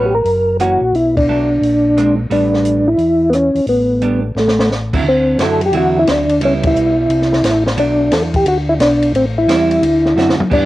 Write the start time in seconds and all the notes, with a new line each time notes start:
Already playing: A1 F#3 B3 C#4
0.05 G4
0.14 A#4
0.24 F#1, open hi-hat
0.60 E3 A#3 C#4 F#4, cross-stick, closed hi-hat
0.81 A#1
0.93 B1 E4, open hi-hat
1.17 D4, kick, ride
1.29 F#3 A3 D4
1.61 A#1, open hi-hat
1.97 G#3 C4 D4, cross-stick, closed hi-hat
2.30 A1 G3 B3 D4, open hi-hat
2.54 snare
2.65 closed hi-hat
2.88 E4
2.98 E2, open hi-hat
3.30 B3, cross-stick, closed hi-hat
3.35 C#4
3.55 E2, open hi-hat
3.67 A1 B3, open hi-hat
4.02 G3 B3 D4, closed hi-hat
4.35 A1, snare
4.39 A3
4.48 snare
4.60 snare
4.71 snare
4.93 D3 F#3 C4 E4, kick, crash
5.04 D2
5.09 C4
5.38 F#2 D3 F#3 C4 E4, snare, hi-hat pedal, ride
5.43 A4
5.61 ride
5.66 G4
5.72 E2 D3 F#3 C4 E4, ride
5.77 F#4
5.99 E4
6.07 D2, snare, hi-hat pedal, ride
6.11 D4
6.29 ride
6.40 C#2 G3 B3 E4, ride
6.45 C#4
6.63 E4, kick, ride
6.74 B1, hi-hat pedal
7.09 C2, ride
7.22 snare
7.33 snare
7.43 A1, snare, hi-hat pedal, ride
7.66 snare
7.77 B1 F#3 A3 D4, ride
8.11 E2 A4, snare, hi-hat pedal, ride
8.34 G4, kick, ride
8.45 D2 F#4, ride
8.69 E4
8.79 B1 D4, snare, hi-hat pedal, ride
9.02 ride
9.13 A1 C4, ride
9.38 E4
9.47 E2 G3 C4 E4, snare, hi-hat pedal, ride
9.71 ride
9.81 D2, ride
10.05 snare
10.15 F#2 D3 A3 C4 F#4, snare, hi-hat pedal
10.29 snare
10.38 F#2, mid tom
10.50 G2 E3 B3 D4, kick, crash